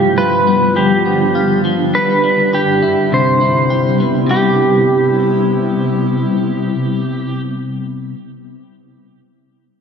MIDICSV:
0, 0, Header, 1, 4, 480
1, 0, Start_track
1, 0, Key_signature, 0, "major"
1, 0, Tempo, 588235
1, 1582, Time_signature, 4, 2, 24, 8
1, 8003, End_track
2, 0, Start_track
2, 0, Title_t, "Pedal steel guitar"
2, 0, Program_c, 0, 26
2, 0, Note_on_c, 0, 67, 77
2, 145, Note_on_c, 0, 71, 90
2, 162, Note_off_c, 0, 67, 0
2, 624, Note_on_c, 0, 67, 69
2, 638, Note_off_c, 0, 71, 0
2, 1310, Note_off_c, 0, 67, 0
2, 1590, Note_on_c, 0, 71, 80
2, 2077, Note_on_c, 0, 67, 77
2, 2081, Note_off_c, 0, 71, 0
2, 2561, Note_on_c, 0, 72, 84
2, 2564, Note_off_c, 0, 67, 0
2, 3239, Note_off_c, 0, 72, 0
2, 3515, Note_on_c, 0, 67, 60
2, 6049, Note_off_c, 0, 67, 0
2, 8003, End_track
3, 0, Start_track
3, 0, Title_t, "Clean electric guitar"
3, 0, Program_c, 1, 27
3, 0, Note_on_c, 1, 43, 76
3, 0, Note_on_c, 1, 53, 58
3, 0, Note_on_c, 1, 65, 61
3, 135, Note_off_c, 1, 65, 0
3, 144, Note_on_c, 1, 65, 62
3, 384, Note_on_c, 1, 59, 54
3, 615, Note_off_c, 1, 53, 0
3, 625, Note_on_c, 1, 53, 60
3, 860, Note_off_c, 1, 59, 0
3, 863, Note_on_c, 1, 59, 49
3, 1093, Note_off_c, 1, 65, 0
3, 1103, Note_on_c, 1, 65, 61
3, 1335, Note_off_c, 1, 53, 0
3, 1345, Note_on_c, 1, 53, 50
3, 1583, Note_off_c, 1, 65, 0
3, 1584, Note_off_c, 1, 43, 0
3, 1588, Note_on_c, 1, 55, 75
3, 1594, Note_on_c, 1, 71, 65
3, 1632, Note_off_c, 1, 53, 0
3, 1825, Note_on_c, 1, 62, 53
3, 2063, Note_off_c, 1, 71, 0
3, 2066, Note_on_c, 1, 71, 59
3, 2302, Note_off_c, 1, 59, 0
3, 2305, Note_on_c, 1, 64, 55
3, 2545, Note_on_c, 1, 48, 70
3, 2592, Note_off_c, 1, 62, 0
3, 2779, Note_off_c, 1, 64, 0
3, 2783, Note_on_c, 1, 64, 51
3, 3019, Note_off_c, 1, 71, 0
3, 3022, Note_on_c, 1, 67, 55
3, 3264, Note_on_c, 1, 59, 49
3, 3471, Note_off_c, 1, 48, 0
3, 3480, Note_on_c, 1, 48, 68
3, 3501, Note_off_c, 1, 55, 0
3, 3504, Note_on_c, 1, 55, 72
3, 3519, Note_off_c, 1, 59, 0
3, 3522, Note_on_c, 1, 59, 74
3, 3537, Note_off_c, 1, 64, 0
3, 3540, Note_on_c, 1, 64, 78
3, 3554, Note_off_c, 1, 67, 0
3, 3558, Note_on_c, 1, 67, 78
3, 6635, Note_off_c, 1, 48, 0
3, 6647, Note_off_c, 1, 55, 0
3, 6656, Note_off_c, 1, 59, 0
3, 6665, Note_off_c, 1, 64, 0
3, 6674, Note_off_c, 1, 67, 0
3, 8003, End_track
4, 0, Start_track
4, 0, Title_t, "Ambient pad"
4, 0, Program_c, 2, 92
4, 0, Note_on_c, 2, 50, 83
4, 0, Note_on_c, 2, 55, 73
4, 0, Note_on_c, 2, 62, 72
4, 0, Note_on_c, 2, 65, 89
4, 1565, Note_off_c, 2, 65, 0
4, 1566, Note_off_c, 2, 50, 0
4, 1584, Note_on_c, 2, 50, 70
4, 1584, Note_on_c, 2, 64, 83
4, 1585, Note_on_c, 2, 43, 71
4, 2510, Note_off_c, 2, 55, 0
4, 2532, Note_off_c, 2, 64, 0
4, 2534, Note_off_c, 2, 43, 0
4, 2534, Note_off_c, 2, 50, 0
4, 2542, Note_on_c, 2, 48, 70
4, 2542, Note_on_c, 2, 64, 78
4, 2543, Note_on_c, 2, 55, 59
4, 3472, Note_off_c, 2, 62, 0
4, 3489, Note_off_c, 2, 48, 0
4, 3489, Note_off_c, 2, 64, 0
4, 3490, Note_off_c, 2, 55, 0
4, 3498, Note_on_c, 2, 59, 72
4, 3499, Note_on_c, 2, 48, 69
4, 3499, Note_on_c, 2, 55, 68
4, 3499, Note_on_c, 2, 64, 89
4, 6040, Note_off_c, 2, 59, 0
4, 6041, Note_off_c, 2, 48, 0
4, 6041, Note_off_c, 2, 55, 0
4, 6041, Note_off_c, 2, 64, 0
4, 8003, End_track
0, 0, End_of_file